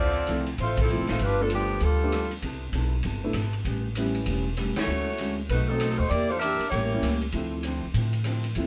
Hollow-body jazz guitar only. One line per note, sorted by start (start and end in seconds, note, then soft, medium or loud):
0.00 0.17 D3 soft
0.00 0.17 F3 soft
0.00 0.18 C4 soft
0.00 0.18 E4 soft
0.27 0.47 D3 medium
0.27 0.48 F3 medium
0.27 0.48 C4 medium
0.27 0.48 E4 medium
0.59 0.79 D3 soft
0.59 0.79 F3 soft
0.59 0.80 C4 soft
0.59 0.80 E4 soft
0.90 1.10 D3 soft
0.90 1.10 F3 soft
0.90 1.10 C4 soft
0.90 1.10 E4 medium
1.20 1.40 G2 soft
1.20 1.41 F3 soft
1.20 1.41 B3 soft
1.20 1.42 D4 soft
1.52 1.72 G2 medium
1.52 1.72 F3 medium
1.52 1.72 B3 medium
1.52 1.72 D4 medium
1.83 2.02 G2 soft
1.83 2.03 F3 soft
1.83 2.03 B3 soft
1.83 2.04 D4 soft
2.12 2.32 G2 soft
2.12 2.32 F3 medium
2.12 2.33 B3 medium
2.12 2.33 D4 medium
2.43 2.63 C3 soft
2.43 2.63 B3 medium
2.43 2.64 E4 medium
2.43 2.64 A4 medium
2.74 2.94 C3 medium
2.74 2.94 B3 medium
2.74 2.95 E4 medium
2.74 2.95 A4 medium
3.04 3.24 C3 soft
3.04 3.24 B3 soft
3.04 3.25 E4 soft
3.04 3.25 A4 soft
3.35 3.55 C3 medium
3.35 3.55 B3 medium
3.35 3.55 E4 medium
3.35 3.55 A4 medium
3.66 3.86 A2 medium
3.66 3.86 G3 soft
3.66 3.86 B3 medium
3.66 3.87 C#4 medium
3.97 4.17 A2 medium
3.97 4.17 G3 medium
3.97 4.17 B3 medium
3.97 4.17 C#4 medium
4.27 4.47 A2 soft
4.27 4.47 G3 soft
4.27 4.48 B3 medium
4.27 4.48 C#4 medium
4.58 4.78 A2 medium
4.58 4.78 G3 medium
4.58 4.78 B3 medium
4.58 4.79 C#4 medium
4.89 5.09 D3 soft
4.89 5.09 G#3 soft
4.89 5.09 C#4 soft
4.89 5.10 F#4 soft
5.20 5.39 D3 medium
5.20 5.40 G#3 medium
5.20 5.40 C#4 medium
5.20 5.40 F#4 medium
5.50 5.70 B2 soft
5.50 5.70 A3 soft
5.50 5.71 C4 soft
5.50 5.71 D#4 soft
5.81 6.01 B2 medium
5.81 6.01 A3 medium
5.81 6.01 C4 medium
5.81 6.02 D#4 medium
6.12 6.31 E3 soft
6.12 6.32 A#3 soft
6.12 6.32 D4 soft
6.12 6.33 G4 medium
6.42 6.62 E3 medium
6.42 6.62 A#3 medium
6.42 6.63 D4 medium
6.42 6.63 G4 medium
6.71 6.92 A2 soft
6.71 6.93 G3 soft
6.71 6.93 A#3 soft
6.71 6.93 C#4 soft
7.02 7.23 A2 medium
7.02 7.23 G3 medium
7.02 7.24 A#3 medium
7.02 7.24 C#4 medium
7.33 7.54 D3 medium
7.33 7.54 F3 medium
7.33 7.55 C4 medium
7.33 7.55 E4 medium
7.65 7.85 D3 medium
7.65 7.85 F3 medium
7.65 7.85 C4 medium
7.65 7.85 E4 medium
7.94 8.15 D3 soft
7.94 8.15 F3 soft
7.94 8.16 C4 soft
7.94 8.16 E4 medium
8.25 8.46 D3 medium
8.25 8.46 F3 medium
8.25 8.46 C4 medium
8.25 8.47 E4 medium
8.57 8.67 D3 medium
8.57 8.67 F3 medium
8.57 8.67 C4 medium
8.57 8.67 E4 medium